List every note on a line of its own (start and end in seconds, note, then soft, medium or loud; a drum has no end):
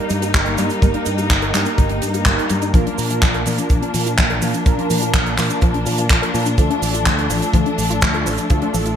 0.00 2.70 G3 medium
0.00 0.31 A#3 medium
0.00 6.54 A#3 medium
0.00 0.31 D#4 medium
0.00 2.71 D#4 medium
0.00 0.31 G4 medium
0.00 0.31 A#4 loud
0.10 0.32 G2 medium
0.10 0.18 G3 medium
0.10 closed hi-hat medium
0.10 cabasa medium
0.22 0.34 G4 medium
0.22 closed hi-hat medium
0.22 cabasa medium
0.34 0.56 G1 loud
0.34 0.39 G3 medium
0.34 0.79 A#3 medium
0.34 0.79 D#4 medium
0.34 0.79 G4 medium
0.34 0.79 A#4 medium
0.34 kick loud
0.34 clap loud
0.34 closed hi-hat medium
0.34 cabasa soft
0.46 0.58 A#4 medium
0.46 closed hi-hat medium
0.58 0.69 G2 medium
0.58 0.66 G3 loud
0.58 closed hi-hat medium
0.58 cabasa medium
0.70 0.82 D#4 medium
0.70 closed hi-hat medium
0.70 cabasa medium
0.82 0.93 G1 loud
0.82 0.90 G3 loud
0.82 1.51 A#3 loud
0.82 1.51 D#4 medium
0.82 1.51 G4 medium
0.82 1.51 A#4 loud
0.82 kick loud
0.82 closed hi-hat medium
0.82 cabasa soft
0.94 0.99 D#4 medium
0.94 closed hi-hat medium
1.06 1.28 G2 medium
1.06 1.14 G3 medium
1.06 closed hi-hat medium
1.06 cabasa medium
1.18 1.30 G4 medium
1.18 closed hi-hat medium
1.18 cabasa medium
1.30 1.51 G1 medium
1.30 1.35 G3 medium
1.30 kick loud
1.30 clap loud
1.30 closed hi-hat medium
1.30 cabasa medium
1.42 1.54 A#4 medium
1.42 closed hi-hat medium
1.54 1.65 G2 loud
1.54 1.62 G3 loud
1.54 2.23 A#3 medium
1.54 2.23 D#4 medium
1.54 2.23 G4 medium
1.54 2.23 A#4 loud
1.54 clap medium
1.54 closed hi-hat medium
1.54 cabasa medium
1.65 1.78 D#4 medium
1.65 closed hi-hat soft
1.65 cabasa soft
1.78 2.00 G1 medium
1.78 1.86 G3 loud
1.78 kick loud
1.78 closed hi-hat medium
1.78 cabasa soft
1.89 1.95 D#4 medium
1.89 closed hi-hat medium
2.02 2.24 G2 medium
2.02 2.10 G3 medium
2.02 closed hi-hat medium
2.02 cabasa medium
2.14 2.26 G4 medium
2.14 closed hi-hat medium
2.14 cabasa medium
2.26 2.37 G1 medium
2.26 2.31 G3 medium
2.26 2.71 A#3 medium
2.26 2.71 D#4 medium
2.26 2.71 G4 medium
2.26 2.71 A#4 loud
2.26 kick loud
2.26 clap loud
2.26 closed hi-hat medium
2.26 cabasa soft
2.38 2.50 A#4 medium
2.38 closed hi-hat medium
2.50 2.72 G2 medium
2.50 2.58 G3 medium
2.50 closed hi-hat loud
2.50 cabasa medium
2.62 2.74 D#4 medium
2.62 closed hi-hat medium
2.62 cabasa medium
2.74 2.85 A#1 loud
2.74 8.96 F3 medium
2.74 2.82 F3 loud
2.74 3.43 A#3 loud
2.74 8.96 D4 medium
2.74 3.43 D4 medium
2.74 3.43 F4 medium
2.74 3.43 A#4 loud
2.74 kick loud
2.74 closed hi-hat medium
2.74 cabasa medium
2.86 2.91 D4 medium
2.86 closed hi-hat medium
2.98 3.20 A#2 medium
2.98 3.06 F3 medium
2.98 open hi-hat loud
2.98 cabasa medium
3.10 3.22 F4 medium
3.10 closed hi-hat medium
3.10 cabasa medium
3.22 3.44 A#1 medium
3.22 3.27 F3 medium
3.22 kick loud
3.22 clap loud
3.22 closed hi-hat medium
3.22 cabasa soft
3.34 3.46 A#4 medium
3.34 closed hi-hat medium
3.46 3.57 A#2 medium
3.46 3.54 F3 loud
3.46 4.15 A#3 medium
3.46 4.15 D4 medium
3.46 4.15 F4 medium
3.46 4.15 A#4 loud
3.46 open hi-hat loud
3.46 cabasa medium
3.58 3.70 D4 medium
3.58 closed hi-hat soft
3.58 cabasa medium
3.70 3.81 A#1 medium
3.70 3.78 F3 loud
3.70 kick loud
3.70 closed hi-hat medium
3.70 cabasa soft
3.82 3.87 D4 medium
3.82 closed hi-hat medium
3.94 4.16 A#2 medium
3.94 4.02 F3 medium
3.94 open hi-hat loud
3.94 cabasa medium
4.06 4.18 F4 medium
4.06 closed hi-hat medium
4.06 cabasa medium
4.18 4.40 A#1 medium
4.18 4.23 F3 medium
4.18 4.63 A#3 medium
4.18 4.63 D4 medium
4.18 4.63 F4 medium
4.18 4.63 A#4 loud
4.18 kick loud
4.18 clap loud
4.18 closed hi-hat medium
4.18 cabasa soft
4.30 4.42 A#4 medium
4.30 closed hi-hat soft
4.42 4.53 A#2 medium
4.42 4.50 F3 loud
4.42 open hi-hat medium
4.42 cabasa medium
4.54 4.66 D4 medium
4.54 closed hi-hat soft
4.54 cabasa medium
4.66 4.77 A#1 loud
4.66 4.74 F3 loud
4.66 5.35 A#3 loud
4.66 5.35 D4 medium
4.66 5.35 F4 medium
4.66 5.35 A#4 loud
4.66 kick loud
4.66 closed hi-hat medium
4.66 cabasa soft
4.78 4.83 D4 medium
4.78 closed hi-hat medium
4.90 5.12 A#2 loud
4.90 4.98 F3 medium
4.90 open hi-hat loud
4.90 cabasa medium
5.02 5.14 F4 medium
5.02 closed hi-hat medium
5.02 cabasa medium
5.14 5.35 A#1 medium
5.14 5.19 F3 medium
5.14 kick loud
5.14 clap loud
5.14 closed hi-hat medium
5.14 cabasa medium
5.26 5.38 A#4 medium
5.26 closed hi-hat soft
5.38 5.49 A#2 loud
5.38 5.46 F3 loud
5.38 6.07 A#3 medium
5.38 6.07 D4 medium
5.38 6.07 F4 medium
5.38 6.07 A#4 loud
5.38 clap medium
5.38 open hi-hat medium
5.38 cabasa medium
5.50 5.62 D4 medium
5.50 closed hi-hat soft
5.50 cabasa medium
5.62 5.83 A#1 loud
5.62 5.70 F3 loud
5.62 kick loud
5.62 closed hi-hat medium
5.62 cabasa soft
5.74 5.79 D4 medium
5.74 closed hi-hat medium
5.86 6.08 A#2 medium
5.86 5.94 F3 medium
5.86 open hi-hat loud
5.86 cabasa medium
5.98 6.10 F4 medium
5.98 closed hi-hat medium
5.98 cabasa medium
6.10 6.21 A#1 medium
6.10 6.15 F3 medium
6.10 6.55 A#3 medium
6.10 6.55 D4 medium
6.10 6.55 F4 medium
6.10 6.55 A#4 medium
6.10 kick loud
6.10 clap loud
6.10 closed hi-hat medium
6.10 cabasa medium
6.22 6.34 A#4 medium
6.22 closed hi-hat medium
6.34 6.56 A#2 medium
6.34 6.42 F3 loud
6.34 open hi-hat loud
6.34 cabasa medium
6.46 6.57 D4 medium
6.46 closed hi-hat medium
6.46 cabasa medium
6.58 6.69 D2 loud
6.58 6.66 F3 loud
6.58 8.96 A3 medium
6.58 7.27 A3 loud
6.58 7.27 D4 medium
6.58 7.27 F4 medium
6.58 7.27 A4 loud
6.58 kick loud
6.58 closed hi-hat medium
6.58 cabasa soft
6.70 6.75 D4 medium
6.70 closed hi-hat medium
6.82 7.04 A1 loud
6.82 6.90 F3 medium
6.82 open hi-hat loud
6.82 cabasa medium
6.94 7.06 F4 medium
6.94 closed hi-hat medium
6.94 cabasa medium
7.06 7.28 D2 medium
7.06 7.11 F3 medium
7.06 kick loud
7.06 clap loud
7.06 closed hi-hat medium
7.06 cabasa soft
7.18 7.30 A4 medium
7.18 closed hi-hat medium
7.30 7.41 A1 loud
7.30 7.38 F3 medium
7.30 7.99 A3 medium
7.30 7.99 D4 medium
7.30 7.99 F4 medium
7.30 7.99 A4 loud
7.30 open hi-hat medium
7.30 cabasa medium
7.42 7.54 D4 medium
7.42 closed hi-hat medium
7.42 cabasa medium
7.53 7.65 D2 loud
7.53 7.62 F3 loud
7.53 kick loud
7.53 closed hi-hat medium
7.53 cabasa soft
7.66 7.71 D4 medium
7.66 closed hi-hat soft
7.78 8.00 A1 medium
7.78 7.86 F3 medium
7.78 open hi-hat loud
7.78 cabasa medium
7.90 8.02 F4 medium
7.90 closed hi-hat medium
7.90 cabasa soft
8.01 8.24 D2 medium
8.01 8.07 F3 medium
8.01 8.47 A3 medium
8.01 8.47 D4 medium
8.01 8.47 F4 medium
8.01 8.47 A4 loud
8.01 kick loud
8.01 clap loud
8.01 closed hi-hat medium
8.01 cabasa medium
8.14 8.26 A4 medium
8.14 closed hi-hat medium
8.26 8.37 A1 medium
8.26 8.34 F3 loud
8.26 open hi-hat medium
8.26 cabasa medium
8.38 8.50 D4 medium
8.38 closed hi-hat medium
8.38 cabasa medium
8.50 8.61 D2 loud
8.50 8.58 F3 loud
8.50 8.96 A3 loud
8.50 8.96 D4 medium
8.50 8.96 F4 medium
8.50 8.96 A4 loud
8.50 kick loud
8.50 closed hi-hat medium
8.50 cabasa soft
8.62 8.67 D4 medium
8.62 closed hi-hat medium
8.74 8.96 A1 loud
8.74 8.82 F3 medium
8.74 open hi-hat medium
8.74 cabasa medium
8.86 8.96 F4 medium
8.86 closed hi-hat medium
8.86 cabasa soft